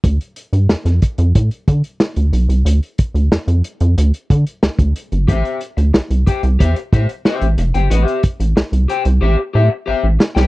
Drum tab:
HH |xxxx-xxxxxxx-xxx|xxxx-xxxxxxx-xxx|xxxx-xxxxxxx-xxx|xxxx-xxx--------|
SD |----oo------o---|----o-------o---|----o-------o---|----o---------oo|
BD |o-----o-o-o-----|--o-------o--o--|o-----o-o-o-----|--o-------------|